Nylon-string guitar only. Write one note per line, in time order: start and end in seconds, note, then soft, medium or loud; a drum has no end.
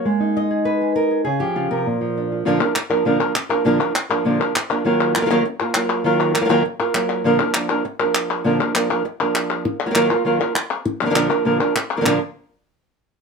0.00 0.50 A#3 medium
0.05 1.24 G#3 medium
0.20 1.24 D#4 medium
0.37 0.96 D#5 loud
0.51 0.80 G#4 medium
0.65 0.95 B4 loud
0.81 1.10 G#4 medium
0.96 1.24 A#4 loud
1.11 1.23 G#4 medium
1.25 1.41 C#3 medium
1.25 1.70 G#4 loud
1.40 2.00 F3 medium
1.40 1.85 G4 loud
1.55 1.71 C#3 medium
1.55 1.86 F4 medium
1.71 1.86 C3 medium
1.71 2.31 A#4 loud
1.86 2.44 A#2 medium
2.01 2.45 F3 medium
2.17 2.45 D4 medium
2.32 2.44 F4 soft
2.45 2.60 A#2 medium
2.45 2.60 D3 loud
2.45 2.60 F3 loud
2.45 2.60 A#3 loud
2.45 2.60 D4 loud
2.45 2.59 A#4 loud
2.60 2.74 F3 soft
2.60 2.74 A#3 medium
2.60 2.75 D4 medium
2.60 2.75 A#4 medium
2.75 muted nylon-string guitar stroke medium
2.90 3.05 F3 medium
2.90 3.05 A#3 medium
2.90 3.05 D4 medium
2.90 3.04 A#4 medium
3.05 3.20 A#2 medium
3.05 3.20 D3 medium
3.05 3.20 F3 medium
3.05 3.20 A#3 medium
3.05 3.19 D4 medium
3.05 3.19 A#4 medium
3.20 3.34 F3 medium
3.20 3.35 A#3 medium
3.20 3.35 D4 medium
3.20 3.34 A#4 medium
3.35 muted nylon-string guitar stroke medium
3.49 3.64 F3 medium
3.49 3.65 A#3 medium
3.49 3.65 D4 medium
3.49 3.64 A#4 medium
3.65 3.79 A#2 medium
3.65 3.80 D3 loud
3.65 3.80 F3 loud
3.65 3.80 A#3 loud
3.65 3.79 D4 loud
3.65 3.79 A#4 loud
3.80 3.94 F3 medium
3.80 3.94 A#3 medium
3.80 3.94 D4 medium
3.80 3.94 A#4 medium
3.94 muted nylon-string guitar stroke medium
4.10 4.24 F3 medium
4.10 4.25 A#3 medium
4.10 4.25 D4 medium
4.10 4.24 A#4 medium
4.25 4.39 A#2 medium
4.25 4.40 D3 medium
4.25 4.40 F3 loud
4.25 4.40 A#3 medium
4.25 4.39 D4 medium
4.25 4.39 A#4 medium
4.40 4.54 F3 soft
4.40 4.55 A#3 medium
4.40 4.55 D4 medium
4.40 4.54 A#4 medium
4.55 muted nylon-string guitar stroke medium
4.70 4.85 F3 medium
4.70 4.84 A#3 medium
4.70 4.85 D4 medium
4.70 4.84 A#4 medium
4.85 5.14 D#3 medium
4.85 5.15 F#3 loud
4.85 5.15 A#3 loud
4.85 5.15 F4 loud
4.85 5.14 A#4 loud
5.15 5.20 F#3 medium
5.15 5.19 A#3 medium
5.15 5.18 F4 medium
5.15 5.17 A#4 medium
5.15 5.21 A#4 medium
5.21 5.24 F#3 medium
5.21 5.25 A#3 medium
5.21 5.25 F4 medium
5.21 5.26 A#4 medium
5.26 5.29 F#3 loud
5.26 5.29 A#3 medium
5.26 5.30 F4 medium
5.26 5.30 A#4 loud
5.30 5.44 D#3 loud
5.30 5.44 F#3 loud
5.30 5.44 A#3 loud
5.30 5.44 F4 loud
5.30 5.45 A#4 loud
5.45 muted nylon-string guitar stroke medium
5.60 5.75 A#3 medium
5.60 5.75 F4 medium
5.60 5.74 A#4 medium
5.75 6.04 F#3 medium
5.75 6.04 A#3 medium
5.75 6.05 F4 medium
5.75 6.05 A#4 medium
6.04 6.34 D#3 loud
6.04 6.34 F#3 medium
6.04 6.35 A#3 medium
6.04 6.34 F4 loud
6.04 6.33 A#4 loud
6.34 6.39 F#3 medium
6.34 6.38 A#3 soft
6.34 6.37 F4 medium
6.34 6.36 A#4 medium
6.40 6.43 F#3 medium
6.40 6.44 A#3 medium
6.40 6.44 F4 medium
6.40 6.45 A#4 medium
6.45 6.48 F#3 medium
6.45 6.49 A#3 medium
6.45 6.49 F4 loud
6.45 6.49 A#4 loud
6.49 6.64 D#3 loud
6.49 6.64 F#3 loud
6.49 6.64 A#3 loud
6.49 6.64 F4 loud
6.49 6.64 A#4 loud
6.65 muted nylon-string guitar stroke medium
6.80 6.94 A#3 medium
6.80 6.94 F4 medium
6.80 6.94 A#4 medium
6.94 7.24 F#3 medium
6.94 7.24 A#3 medium
6.94 7.25 F4 medium
6.94 7.25 A#4 medium
7.24 7.39 A#2 medium
7.24 7.39 D3 medium
7.24 7.39 F3 loud
7.24 7.39 A#3 loud
7.24 7.39 D4 loud
7.24 7.38 A#4 loud
7.39 7.53 F3 soft
7.39 7.54 A#3 medium
7.39 7.54 D4 medium
7.39 7.54 A#4 medium
7.55 7.69 F3 medium
7.55 7.69 A#3 medium
7.55 7.69 D4 medium
7.55 7.68 A#4 medium
7.70 7.84 F3 medium
7.70 7.84 A#3 medium
7.70 7.84 D4 medium
7.70 7.84 A#4 medium
7.85 muted nylon-string guitar stroke medium
8.00 8.45 F3 soft
8.00 8.45 A#3 medium
8.00 8.45 D4 medium
8.00 8.46 A#4 medium
8.44 8.59 A#2 loud
8.44 8.59 D3 medium
8.44 8.59 F3 loud
8.44 8.59 A#3 medium
8.44 8.59 D4 loud
8.44 8.58 A#4 loud
8.60 8.73 F3 soft
8.60 8.74 A#3 medium
8.60 8.75 D4 medium
8.60 8.74 A#4 medium
8.74 8.89 F3 medium
8.74 8.89 A#3 medium
8.74 8.89 D4 medium
8.74 8.88 A#4 medium
8.90 9.04 F3 medium
8.90 9.04 A#3 medium
8.90 9.04 D4 medium
8.90 9.04 A#4 medium
9.05 muted nylon-string guitar stroke medium
9.20 9.68 F3 medium
9.20 9.86 A#3 medium
9.20 9.65 D4 medium
9.20 9.87 A#4 medium
9.65 muted nylon-string guitar stroke medium
9.86 9.89 F#3 medium
9.86 9.90 A#3 medium
9.86 9.90 F4 medium
9.86 9.90 A#4 medium
9.90 9.94 F#3 medium
9.90 9.94 A#3 medium
9.90 9.95 F4 medium
9.90 9.95 A#4 medium
9.95 10.09 D#3 loud
9.95 10.09 F#3 loud
9.95 10.10 A#3 loud
9.95 10.09 F4 loud
9.95 10.09 A#4 loud
10.10 10.24 A#3 medium
10.10 10.25 F4 medium
10.10 10.24 A#4 medium
10.25 10.39 D#3 medium
10.25 10.40 F#3 medium
10.25 10.40 A#3 medium
10.25 10.39 F4 loud
10.25 10.38 A#4 loud
10.40 10.54 A#3 soft
10.40 10.54 F4 medium
10.40 10.54 A#4 medium
10.55 muted nylon-string guitar stroke medium
10.86 muted nylon-string guitar stroke medium
11.01 11.04 D3 medium
11.01 11.05 F3 medium
11.01 11.05 A#3 medium
11.01 11.05 D4 medium
11.01 11.06 A#4 medium
11.06 11.09 D3 medium
11.06 11.09 F3 medium
11.06 11.10 A#3 medium
11.06 11.10 D4 medium
11.06 11.10 A#4 medium
11.10 11.14 D3 medium
11.10 11.14 F3 medium
11.10 11.14 A#3 medium
11.10 11.14 D4 medium
11.10 11.15 A#4 medium
11.15 11.29 A#2 medium
11.15 11.29 D3 medium
11.15 11.29 F3 loud
11.15 11.30 A#3 medium
11.15 11.29 D4 loud
11.15 11.28 A#4 loud
11.30 11.45 F3 medium
11.30 11.45 A#3 medium
11.30 11.44 D4 medium
11.30 11.44 A#4 medium
11.45 11.59 A#2 medium
11.45 11.60 D3 loud
11.45 11.60 F3 medium
11.45 11.60 A#3 medium
11.45 11.59 D4 medium
11.45 11.59 A#4 medium
11.60 11.75 F3 soft
11.60 11.75 A#3 medium
11.60 11.75 D4 medium
11.60 11.74 A#4 medium
11.76 muted nylon-string guitar stroke medium
11.97 12.00 D3 medium
11.97 12.00 F3 medium
11.97 12.01 A#3 medium
11.97 12.01 D4 medium
11.97 12.01 A#4 medium
12.01 12.04 D3 medium
12.01 12.05 F3 medium
12.01 12.05 A#3 medium
12.01 12.05 D4 medium
12.01 12.05 A#4 medium
12.06 12.17 A#2 loud
12.06 12.17 D3 loud
12.06 12.18 F3 loud
12.06 12.18 A#3 loud
12.06 12.18 D4 loud
12.06 12.18 A#4 loud